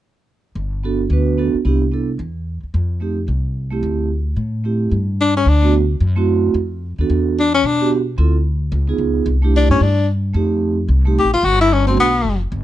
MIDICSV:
0, 0, Header, 1, 5, 480
1, 0, Start_track
1, 0, Key_signature, 1, "major"
1, 0, Tempo, 271862
1, 978, Time_signature, 4, 2, 24, 8
1, 22315, End_track
2, 0, Start_track
2, 0, Title_t, "Vibraphone"
2, 0, Program_c, 0, 11
2, 1475, Note_on_c, 0, 59, 50
2, 1489, Note_on_c, 0, 66, 45
2, 1493, Note_on_c, 0, 62, 46
2, 1506, Note_on_c, 0, 69, 55
2, 1726, Note_off_c, 0, 59, 0
2, 1733, Note_off_c, 0, 66, 0
2, 1735, Note_off_c, 0, 62, 0
2, 1742, Note_off_c, 0, 69, 0
2, 1965, Note_on_c, 0, 59, 48
2, 1970, Note_on_c, 0, 62, 42
2, 1986, Note_on_c, 0, 66, 38
2, 1994, Note_on_c, 0, 71, 53
2, 2410, Note_off_c, 0, 59, 0
2, 2418, Note_off_c, 0, 62, 0
2, 2426, Note_off_c, 0, 66, 0
2, 2429, Note_off_c, 0, 71, 0
2, 2431, Note_on_c, 0, 59, 47
2, 2444, Note_on_c, 0, 62, 43
2, 2449, Note_on_c, 0, 66, 42
2, 2458, Note_on_c, 0, 69, 51
2, 2686, Note_off_c, 0, 59, 0
2, 2692, Note_off_c, 0, 62, 0
2, 2694, Note_off_c, 0, 66, 0
2, 2699, Note_off_c, 0, 69, 0
2, 2909, Note_on_c, 0, 59, 49
2, 2922, Note_on_c, 0, 62, 45
2, 2927, Note_on_c, 0, 64, 44
2, 2946, Note_on_c, 0, 67, 53
2, 3165, Note_off_c, 0, 59, 0
2, 3172, Note_off_c, 0, 62, 0
2, 3174, Note_off_c, 0, 64, 0
2, 3184, Note_off_c, 0, 67, 0
2, 3384, Note_on_c, 0, 59, 39
2, 3392, Note_on_c, 0, 62, 38
2, 3413, Note_on_c, 0, 64, 37
2, 3418, Note_on_c, 0, 69, 46
2, 3643, Note_off_c, 0, 59, 0
2, 3648, Note_off_c, 0, 62, 0
2, 3658, Note_off_c, 0, 64, 0
2, 3660, Note_off_c, 0, 69, 0
2, 5301, Note_on_c, 0, 57, 39
2, 5313, Note_on_c, 0, 60, 35
2, 5319, Note_on_c, 0, 63, 36
2, 5337, Note_on_c, 0, 67, 42
2, 5565, Note_off_c, 0, 57, 0
2, 5571, Note_off_c, 0, 60, 0
2, 5574, Note_off_c, 0, 63, 0
2, 5583, Note_off_c, 0, 67, 0
2, 6544, Note_on_c, 0, 57, 47
2, 6561, Note_on_c, 0, 60, 42
2, 6568, Note_on_c, 0, 64, 42
2, 6582, Note_on_c, 0, 67, 51
2, 7189, Note_off_c, 0, 57, 0
2, 7198, Note_off_c, 0, 60, 0
2, 7201, Note_off_c, 0, 64, 0
2, 7208, Note_off_c, 0, 67, 0
2, 8191, Note_on_c, 0, 57, 45
2, 8205, Note_on_c, 0, 60, 39
2, 8210, Note_on_c, 0, 64, 38
2, 8219, Note_on_c, 0, 67, 43
2, 8676, Note_off_c, 0, 57, 0
2, 8683, Note_off_c, 0, 60, 0
2, 8685, Note_off_c, 0, 64, 0
2, 8689, Note_off_c, 0, 67, 0
2, 9915, Note_on_c, 0, 57, 54
2, 9918, Note_on_c, 0, 59, 52
2, 9940, Note_on_c, 0, 62, 48
2, 9950, Note_on_c, 0, 66, 59
2, 10096, Note_off_c, 0, 57, 0
2, 10097, Note_off_c, 0, 59, 0
2, 10108, Note_off_c, 0, 62, 0
2, 10113, Note_off_c, 0, 66, 0
2, 10872, Note_on_c, 0, 57, 62
2, 10885, Note_on_c, 0, 60, 60
2, 10887, Note_on_c, 0, 64, 55
2, 10907, Note_on_c, 0, 66, 65
2, 11516, Note_off_c, 0, 57, 0
2, 11522, Note_off_c, 0, 60, 0
2, 11523, Note_off_c, 0, 64, 0
2, 11533, Note_off_c, 0, 66, 0
2, 12336, Note_on_c, 0, 59, 48
2, 12342, Note_on_c, 0, 62, 46
2, 12363, Note_on_c, 0, 66, 44
2, 12377, Note_on_c, 0, 69, 54
2, 12968, Note_off_c, 0, 59, 0
2, 12971, Note_off_c, 0, 62, 0
2, 12981, Note_off_c, 0, 66, 0
2, 12988, Note_off_c, 0, 69, 0
2, 13765, Note_on_c, 0, 59, 56
2, 13778, Note_on_c, 0, 62, 51
2, 13789, Note_on_c, 0, 67, 62
2, 13793, Note_on_c, 0, 66, 52
2, 13941, Note_off_c, 0, 59, 0
2, 13948, Note_off_c, 0, 62, 0
2, 13953, Note_off_c, 0, 67, 0
2, 13955, Note_off_c, 0, 66, 0
2, 14441, Note_on_c, 0, 60, 57
2, 14452, Note_on_c, 0, 64, 53
2, 14456, Note_on_c, 0, 65, 51
2, 14477, Note_on_c, 0, 69, 60
2, 14699, Note_off_c, 0, 60, 0
2, 14704, Note_off_c, 0, 64, 0
2, 14707, Note_off_c, 0, 65, 0
2, 14718, Note_off_c, 0, 69, 0
2, 15669, Note_on_c, 0, 59, 55
2, 15683, Note_on_c, 0, 63, 46
2, 15693, Note_on_c, 0, 65, 48
2, 15698, Note_on_c, 0, 68, 58
2, 16311, Note_off_c, 0, 59, 0
2, 16318, Note_off_c, 0, 63, 0
2, 16323, Note_off_c, 0, 65, 0
2, 16326, Note_off_c, 0, 68, 0
2, 16636, Note_on_c, 0, 57, 53
2, 16649, Note_on_c, 0, 62, 54
2, 16657, Note_on_c, 0, 64, 51
2, 16675, Note_on_c, 0, 67, 58
2, 17273, Note_off_c, 0, 57, 0
2, 17280, Note_off_c, 0, 62, 0
2, 17283, Note_off_c, 0, 64, 0
2, 17293, Note_off_c, 0, 67, 0
2, 18248, Note_on_c, 0, 57, 57
2, 18261, Note_on_c, 0, 60, 52
2, 18272, Note_on_c, 0, 63, 52
2, 18287, Note_on_c, 0, 67, 64
2, 18967, Note_off_c, 0, 57, 0
2, 18973, Note_off_c, 0, 60, 0
2, 18978, Note_off_c, 0, 63, 0
2, 18986, Note_off_c, 0, 67, 0
2, 19510, Note_on_c, 0, 57, 55
2, 19522, Note_on_c, 0, 60, 52
2, 19531, Note_on_c, 0, 63, 52
2, 19545, Note_on_c, 0, 67, 62
2, 19685, Note_off_c, 0, 57, 0
2, 19691, Note_off_c, 0, 60, 0
2, 19696, Note_off_c, 0, 63, 0
2, 19703, Note_off_c, 0, 67, 0
2, 20942, Note_on_c, 0, 57, 50
2, 20962, Note_on_c, 0, 59, 50
2, 20973, Note_on_c, 0, 62, 48
2, 20981, Note_on_c, 0, 66, 57
2, 21117, Note_off_c, 0, 57, 0
2, 21127, Note_off_c, 0, 59, 0
2, 21133, Note_off_c, 0, 62, 0
2, 21137, Note_off_c, 0, 66, 0
2, 22315, End_track
3, 0, Start_track
3, 0, Title_t, "Tenor saxophone"
3, 0, Program_c, 1, 66
3, 9194, Note_on_c, 1, 62, 66
3, 9445, Note_off_c, 1, 62, 0
3, 9477, Note_on_c, 1, 61, 58
3, 9684, Note_on_c, 1, 62, 59
3, 9710, Note_off_c, 1, 61, 0
3, 10143, Note_off_c, 1, 62, 0
3, 13052, Note_on_c, 1, 62, 66
3, 13296, Note_off_c, 1, 62, 0
3, 13313, Note_on_c, 1, 61, 68
3, 13518, Note_on_c, 1, 62, 62
3, 13545, Note_off_c, 1, 61, 0
3, 13980, Note_off_c, 1, 62, 0
3, 16891, Note_on_c, 1, 62, 67
3, 17132, Note_off_c, 1, 62, 0
3, 17141, Note_on_c, 1, 61, 59
3, 17340, Note_on_c, 1, 62, 65
3, 17366, Note_off_c, 1, 61, 0
3, 17806, Note_off_c, 1, 62, 0
3, 19761, Note_on_c, 1, 67, 66
3, 20001, Note_off_c, 1, 67, 0
3, 20011, Note_on_c, 1, 65, 74
3, 20215, Note_on_c, 1, 66, 76
3, 20241, Note_off_c, 1, 65, 0
3, 20484, Note_off_c, 1, 66, 0
3, 20498, Note_on_c, 1, 64, 80
3, 20705, Note_on_c, 1, 61, 70
3, 20732, Note_off_c, 1, 64, 0
3, 20946, Note_off_c, 1, 61, 0
3, 20957, Note_on_c, 1, 60, 60
3, 21131, Note_off_c, 1, 60, 0
3, 21181, Note_on_c, 1, 59, 66
3, 21870, Note_off_c, 1, 59, 0
3, 22315, End_track
4, 0, Start_track
4, 0, Title_t, "Upright bass"
4, 0, Program_c, 2, 32
4, 978, Note_on_c, 2, 31, 69
4, 1893, Note_off_c, 2, 31, 0
4, 1937, Note_on_c, 2, 38, 67
4, 2654, Note_off_c, 2, 38, 0
4, 2910, Note_on_c, 2, 36, 65
4, 3822, Note_off_c, 2, 36, 0
4, 3866, Note_on_c, 2, 40, 63
4, 4581, Note_off_c, 2, 40, 0
4, 4836, Note_on_c, 2, 41, 69
4, 5748, Note_off_c, 2, 41, 0
4, 5789, Note_on_c, 2, 36, 65
4, 6705, Note_off_c, 2, 36, 0
4, 6757, Note_on_c, 2, 38, 67
4, 7671, Note_off_c, 2, 38, 0
4, 7707, Note_on_c, 2, 45, 65
4, 8626, Note_off_c, 2, 45, 0
4, 8677, Note_on_c, 2, 43, 64
4, 9592, Note_off_c, 2, 43, 0
4, 9641, Note_on_c, 2, 38, 74
4, 10554, Note_off_c, 2, 38, 0
4, 10602, Note_on_c, 2, 42, 74
4, 11515, Note_off_c, 2, 42, 0
4, 11553, Note_on_c, 2, 41, 73
4, 12271, Note_off_c, 2, 41, 0
4, 12330, Note_on_c, 2, 39, 53
4, 12510, Note_off_c, 2, 39, 0
4, 12529, Note_on_c, 2, 40, 75
4, 13438, Note_off_c, 2, 40, 0
4, 13478, Note_on_c, 2, 47, 72
4, 14391, Note_off_c, 2, 47, 0
4, 14442, Note_on_c, 2, 38, 72
4, 15353, Note_off_c, 2, 38, 0
4, 15392, Note_on_c, 2, 37, 74
4, 15842, Note_off_c, 2, 37, 0
4, 15860, Note_on_c, 2, 37, 63
4, 16315, Note_off_c, 2, 37, 0
4, 16345, Note_on_c, 2, 36, 76
4, 17063, Note_off_c, 2, 36, 0
4, 17117, Note_on_c, 2, 43, 64
4, 17299, Note_off_c, 2, 43, 0
4, 17314, Note_on_c, 2, 43, 67
4, 18224, Note_off_c, 2, 43, 0
4, 18262, Note_on_c, 2, 41, 74
4, 19175, Note_off_c, 2, 41, 0
4, 19219, Note_on_c, 2, 36, 72
4, 19816, Note_off_c, 2, 36, 0
4, 19855, Note_on_c, 2, 33, 56
4, 19999, Note_off_c, 2, 33, 0
4, 20010, Note_on_c, 2, 30, 60
4, 20165, Note_off_c, 2, 30, 0
4, 20180, Note_on_c, 2, 31, 74
4, 21089, Note_off_c, 2, 31, 0
4, 21131, Note_on_c, 2, 35, 75
4, 21579, Note_off_c, 2, 35, 0
4, 21616, Note_on_c, 2, 30, 61
4, 22060, Note_off_c, 2, 30, 0
4, 22101, Note_on_c, 2, 31, 75
4, 22315, Note_off_c, 2, 31, 0
4, 22315, End_track
5, 0, Start_track
5, 0, Title_t, "Muted upright bass strokes"
5, 2725, Note_on_c, 9, 29, 27
5, 2901, Note_off_c, 9, 29, 0
5, 4650, Note_on_c, 9, 29, 26
5, 4827, Note_off_c, 9, 29, 0
5, 22315, End_track
0, 0, End_of_file